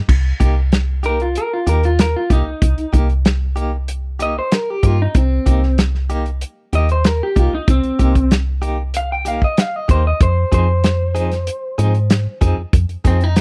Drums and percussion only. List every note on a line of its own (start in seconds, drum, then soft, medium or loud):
0.09 kick loud
0.09 crash medium
0.40 kick medium
0.40 closed hi-hat medium
0.72 snare loud
0.72 closed hi-hat medium
1.04 closed hi-hat medium
1.20 closed hi-hat soft
1.35 closed hi-hat medium
1.67 closed hi-hat medium
1.83 closed hi-hat soft
1.99 snare loud
1.99 closed hi-hat medium
2.30 kick medium
2.30 closed hi-hat medium
2.62 kick loud
2.62 closed hi-hat medium
2.78 closed hi-hat soft
2.93 kick medium
2.93 closed hi-hat medium
3.10 closed hi-hat soft
3.25 snare loud
3.25 closed hi-hat medium
3.57 closed hi-hat medium
3.88 closed hi-hat medium
4.20 closed hi-hat medium
4.52 snare loud
4.52 closed hi-hat medium
4.83 kick medium
4.83 closed hi-hat medium
5.15 kick loud
5.15 closed hi-hat medium
5.46 kick medium
5.46 closed hi-hat medium
5.63 snare soft
5.78 snare loud
5.78 closed hi-hat medium
5.95 snare soft
6.10 closed hi-hat medium
6.26 closed hi-hat soft
6.41 closed hi-hat medium
6.73 closed hi-hat medium
6.89 closed hi-hat soft
7.04 snare loud
7.04 closed hi-hat medium
7.36 kick medium
7.36 closed hi-hat medium
7.68 kick loud
7.68 closed hi-hat medium
7.84 closed hi-hat soft
7.99 kick medium
7.99 closed hi-hat medium
8.15 kick medium
8.15 closed hi-hat soft
8.31 snare loud
8.31 closed hi-hat medium
8.63 closed hi-hat medium
8.94 closed hi-hat medium
9.26 closed hi-hat medium
9.42 kick medium
9.57 snare loud
9.57 closed hi-hat medium
9.89 kick medium
9.89 closed hi-hat medium
10.21 kick loud
10.21 closed hi-hat medium
10.52 kick medium
10.52 closed hi-hat medium
10.84 snare loud
10.84 closed hi-hat medium
11.16 closed hi-hat medium
11.32 snare soft
11.32 closed hi-hat soft
11.47 closed hi-hat medium
11.79 closed hi-hat medium
11.94 closed hi-hat soft
12.10 snare loud
12.10 closed hi-hat medium
12.41 kick medium
12.41 closed hi-hat medium
12.73 kick loud
12.73 closed hi-hat medium
12.89 closed hi-hat soft
13.05 kick medium
13.05 closed hi-hat medium
13.21 closed hi-hat soft
13.36 snare loud
13.36 closed hi-hat medium